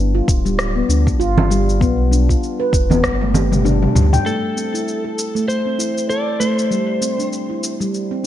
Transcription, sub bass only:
0, 0, Header, 1, 2, 480
1, 0, Start_track
1, 0, Key_signature, 0, "minor"
1, 0, Tempo, 612245
1, 1420, Time_signature, 4, 2, 24, 8
1, 6480, End_track
2, 0, Start_track
2, 0, Title_t, "Sub bass"
2, 0, Program_c, 0, 38
2, 0, Note_on_c, 0, 31, 104
2, 173, Note_off_c, 0, 31, 0
2, 220, Note_on_c, 0, 26, 85
2, 654, Note_off_c, 0, 26, 0
2, 697, Note_on_c, 0, 38, 87
2, 881, Note_off_c, 0, 38, 0
2, 937, Note_on_c, 0, 31, 102
2, 1418, Note_on_c, 0, 35, 115
2, 1430, Note_off_c, 0, 31, 0
2, 1853, Note_off_c, 0, 35, 0
2, 2138, Note_on_c, 0, 29, 86
2, 2377, Note_on_c, 0, 31, 77
2, 2389, Note_off_c, 0, 29, 0
2, 2852, Note_off_c, 0, 31, 0
2, 2857, Note_on_c, 0, 31, 93
2, 3041, Note_off_c, 0, 31, 0
2, 3099, Note_on_c, 0, 38, 97
2, 3282, Note_off_c, 0, 38, 0
2, 6480, End_track
0, 0, End_of_file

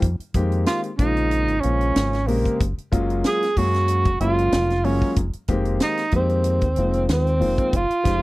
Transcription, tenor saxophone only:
0, 0, Header, 1, 2, 480
1, 0, Start_track
1, 0, Key_signature, -4, "minor"
1, 0, Tempo, 643087
1, 13, Time_signature, 4, 2, 24, 8
1, 6136, End_track
2, 0, Start_track
2, 0, Title_t, "Tenor saxophone"
2, 0, Program_c, 0, 66
2, 500, Note_on_c, 0, 65, 91
2, 607, Note_off_c, 0, 65, 0
2, 731, Note_on_c, 0, 63, 89
2, 1196, Note_on_c, 0, 61, 86
2, 1207, Note_off_c, 0, 63, 0
2, 1695, Note_on_c, 0, 58, 73
2, 1706, Note_off_c, 0, 61, 0
2, 1936, Note_off_c, 0, 58, 0
2, 2437, Note_on_c, 0, 68, 96
2, 2667, Note_on_c, 0, 66, 87
2, 2678, Note_off_c, 0, 68, 0
2, 3135, Note_off_c, 0, 66, 0
2, 3139, Note_on_c, 0, 65, 90
2, 3617, Note_on_c, 0, 61, 73
2, 3628, Note_off_c, 0, 65, 0
2, 3857, Note_off_c, 0, 61, 0
2, 4348, Note_on_c, 0, 63, 90
2, 4565, Note_off_c, 0, 63, 0
2, 4594, Note_on_c, 0, 60, 71
2, 5273, Note_off_c, 0, 60, 0
2, 5315, Note_on_c, 0, 60, 80
2, 5795, Note_on_c, 0, 65, 95
2, 5806, Note_off_c, 0, 60, 0
2, 6136, Note_off_c, 0, 65, 0
2, 6136, End_track
0, 0, End_of_file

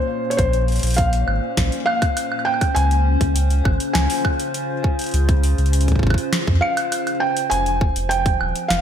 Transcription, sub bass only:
0, 0, Header, 1, 2, 480
1, 0, Start_track
1, 0, Tempo, 594059
1, 312, Time_signature, 4, 2, 24, 8
1, 7120, End_track
2, 0, Start_track
2, 0, Title_t, "Sub bass"
2, 0, Program_c, 0, 38
2, 312, Note_on_c, 0, 34, 99
2, 641, Note_off_c, 0, 34, 0
2, 671, Note_on_c, 0, 34, 91
2, 1001, Note_off_c, 0, 34, 0
2, 1031, Note_on_c, 0, 32, 92
2, 1132, Note_off_c, 0, 32, 0
2, 1272, Note_on_c, 0, 34, 105
2, 1373, Note_off_c, 0, 34, 0
2, 2231, Note_on_c, 0, 37, 101
2, 2561, Note_off_c, 0, 37, 0
2, 2592, Note_on_c, 0, 37, 93
2, 2921, Note_off_c, 0, 37, 0
2, 2952, Note_on_c, 0, 32, 93
2, 3053, Note_off_c, 0, 32, 0
2, 3191, Note_on_c, 0, 37, 106
2, 3292, Note_off_c, 0, 37, 0
2, 4151, Note_on_c, 0, 37, 102
2, 4481, Note_off_c, 0, 37, 0
2, 4510, Note_on_c, 0, 37, 95
2, 4840, Note_off_c, 0, 37, 0
2, 4872, Note_on_c, 0, 32, 91
2, 4973, Note_off_c, 0, 32, 0
2, 5231, Note_on_c, 0, 41, 95
2, 5333, Note_off_c, 0, 41, 0
2, 6071, Note_on_c, 0, 29, 102
2, 6401, Note_off_c, 0, 29, 0
2, 6430, Note_on_c, 0, 29, 90
2, 6761, Note_off_c, 0, 29, 0
2, 6790, Note_on_c, 0, 27, 93
2, 6892, Note_off_c, 0, 27, 0
2, 7031, Note_on_c, 0, 29, 106
2, 7120, Note_off_c, 0, 29, 0
2, 7120, End_track
0, 0, End_of_file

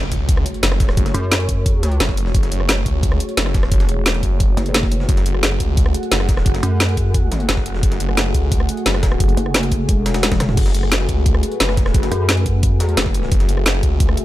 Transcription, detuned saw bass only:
0, 0, Header, 1, 2, 480
1, 0, Start_track
1, 0, Key_signature, 3, "minor"
1, 0, Tempo, 342857
1, 1362, Time_signature, 4, 2, 24, 8
1, 19949, End_track
2, 0, Start_track
2, 0, Title_t, "Detuned saw bass"
2, 0, Program_c, 0, 39
2, 0, Note_on_c, 0, 30, 99
2, 142, Note_off_c, 0, 30, 0
2, 162, Note_on_c, 0, 37, 99
2, 623, Note_off_c, 0, 37, 0
2, 881, Note_on_c, 0, 30, 99
2, 1342, Note_off_c, 0, 30, 0
2, 1363, Note_on_c, 0, 30, 97
2, 1583, Note_off_c, 0, 30, 0
2, 2801, Note_on_c, 0, 30, 101
2, 3263, Note_off_c, 0, 30, 0
2, 3284, Note_on_c, 0, 30, 98
2, 3504, Note_off_c, 0, 30, 0
2, 3522, Note_on_c, 0, 30, 96
2, 3983, Note_off_c, 0, 30, 0
2, 4003, Note_on_c, 0, 37, 101
2, 4463, Note_off_c, 0, 37, 0
2, 4722, Note_on_c, 0, 30, 100
2, 5183, Note_off_c, 0, 30, 0
2, 5202, Note_on_c, 0, 30, 98
2, 5423, Note_off_c, 0, 30, 0
2, 5442, Note_on_c, 0, 28, 99
2, 5903, Note_off_c, 0, 28, 0
2, 5922, Note_on_c, 0, 30, 102
2, 6383, Note_off_c, 0, 30, 0
2, 7122, Note_on_c, 0, 30, 98
2, 7343, Note_off_c, 0, 30, 0
2, 7361, Note_on_c, 0, 30, 99
2, 7823, Note_off_c, 0, 30, 0
2, 7842, Note_on_c, 0, 37, 100
2, 8303, Note_off_c, 0, 37, 0
2, 8562, Note_on_c, 0, 30, 99
2, 9023, Note_off_c, 0, 30, 0
2, 9042, Note_on_c, 0, 30, 101
2, 9263, Note_off_c, 0, 30, 0
2, 10482, Note_on_c, 0, 30, 99
2, 10943, Note_off_c, 0, 30, 0
2, 10963, Note_on_c, 0, 30, 100
2, 11183, Note_off_c, 0, 30, 0
2, 11201, Note_on_c, 0, 30, 97
2, 11663, Note_off_c, 0, 30, 0
2, 11683, Note_on_c, 0, 37, 102
2, 12143, Note_off_c, 0, 37, 0
2, 12402, Note_on_c, 0, 30, 98
2, 12863, Note_off_c, 0, 30, 0
2, 12883, Note_on_c, 0, 30, 96
2, 13103, Note_off_c, 0, 30, 0
2, 14803, Note_on_c, 0, 30, 100
2, 15023, Note_off_c, 0, 30, 0
2, 15041, Note_on_c, 0, 30, 98
2, 15503, Note_off_c, 0, 30, 0
2, 15523, Note_on_c, 0, 37, 104
2, 15984, Note_off_c, 0, 37, 0
2, 16242, Note_on_c, 0, 30, 96
2, 16703, Note_off_c, 0, 30, 0
2, 16723, Note_on_c, 0, 30, 98
2, 16944, Note_off_c, 0, 30, 0
2, 18162, Note_on_c, 0, 30, 98
2, 18623, Note_off_c, 0, 30, 0
2, 18644, Note_on_c, 0, 30, 98
2, 18864, Note_off_c, 0, 30, 0
2, 18881, Note_on_c, 0, 30, 100
2, 19342, Note_off_c, 0, 30, 0
2, 19363, Note_on_c, 0, 37, 99
2, 19823, Note_off_c, 0, 37, 0
2, 19949, End_track
0, 0, End_of_file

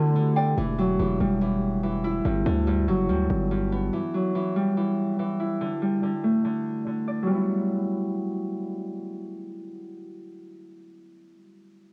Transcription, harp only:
0, 0, Header, 1, 2, 480
1, 0, Start_track
1, 0, Key_signature, 1, "minor"
1, 0, Tempo, 419580
1, 656, Time_signature, 4, 2, 24, 8
1, 13647, End_track
2, 0, Start_track
2, 0, Title_t, "Harp"
2, 0, Program_c, 0, 46
2, 0, Note_on_c, 0, 50, 86
2, 0, Note_on_c, 0, 57, 77
2, 0, Note_on_c, 0, 59, 86
2, 0, Note_on_c, 0, 64, 82
2, 130, Note_off_c, 0, 59, 0
2, 162, Note_off_c, 0, 50, 0
2, 176, Note_on_c, 0, 50, 78
2, 416, Note_on_c, 0, 74, 90
2, 656, Note_on_c, 0, 52, 98
2, 713, Note_off_c, 0, 50, 0
2, 895, Note_on_c, 0, 54, 82
2, 1122, Note_off_c, 0, 52, 0
2, 1135, Note_on_c, 0, 52, 84
2, 1375, Note_on_c, 0, 55, 81
2, 1484, Note_off_c, 0, 64, 0
2, 1602, Note_off_c, 0, 52, 0
2, 1616, Note_on_c, 0, 52, 90
2, 2083, Note_off_c, 0, 52, 0
2, 2096, Note_on_c, 0, 52, 82
2, 2336, Note_on_c, 0, 64, 88
2, 2528, Note_off_c, 0, 74, 0
2, 2575, Note_on_c, 0, 43, 85
2, 2633, Note_off_c, 0, 52, 0
2, 2633, Note_off_c, 0, 54, 0
2, 2633, Note_off_c, 0, 55, 0
2, 2816, Note_on_c, 0, 50, 78
2, 3042, Note_off_c, 0, 43, 0
2, 3055, Note_on_c, 0, 43, 85
2, 3266, Note_off_c, 0, 57, 0
2, 3295, Note_on_c, 0, 54, 88
2, 3522, Note_off_c, 0, 43, 0
2, 3536, Note_on_c, 0, 43, 86
2, 4002, Note_off_c, 0, 43, 0
2, 4016, Note_on_c, 0, 43, 81
2, 4257, Note_on_c, 0, 59, 86
2, 4497, Note_on_c, 0, 52, 88
2, 4553, Note_off_c, 0, 43, 0
2, 4553, Note_off_c, 0, 50, 0
2, 4553, Note_off_c, 0, 54, 0
2, 4738, Note_on_c, 0, 54, 75
2, 4963, Note_off_c, 0, 52, 0
2, 4977, Note_on_c, 0, 52, 88
2, 5216, Note_on_c, 0, 55, 81
2, 5324, Note_off_c, 0, 64, 0
2, 5443, Note_off_c, 0, 52, 0
2, 5457, Note_on_c, 0, 52, 86
2, 5924, Note_off_c, 0, 52, 0
2, 5937, Note_on_c, 0, 52, 83
2, 6176, Note_on_c, 0, 64, 81
2, 6416, Note_on_c, 0, 50, 90
2, 6473, Note_off_c, 0, 52, 0
2, 6473, Note_off_c, 0, 54, 0
2, 6473, Note_off_c, 0, 55, 0
2, 6656, Note_on_c, 0, 55, 75
2, 6883, Note_off_c, 0, 50, 0
2, 6897, Note_on_c, 0, 50, 80
2, 6953, Note_off_c, 0, 55, 0
2, 7137, Note_on_c, 0, 57, 79
2, 7362, Note_off_c, 0, 50, 0
2, 7376, Note_on_c, 0, 50, 83
2, 7810, Note_off_c, 0, 59, 0
2, 7842, Note_off_c, 0, 50, 0
2, 7856, Note_on_c, 0, 50, 73
2, 8096, Note_on_c, 0, 74, 84
2, 8268, Note_on_c, 0, 54, 80
2, 8314, Note_on_c, 0, 55, 75
2, 8360, Note_on_c, 0, 59, 75
2, 8393, Note_off_c, 0, 50, 0
2, 8401, Note_off_c, 0, 64, 0
2, 8405, Note_on_c, 0, 64, 86
2, 10209, Note_off_c, 0, 74, 0
2, 10945, Note_off_c, 0, 57, 0
2, 12874, Note_off_c, 0, 54, 0
2, 12920, Note_off_c, 0, 55, 0
2, 12966, Note_off_c, 0, 59, 0
2, 13011, Note_off_c, 0, 64, 0
2, 13647, End_track
0, 0, End_of_file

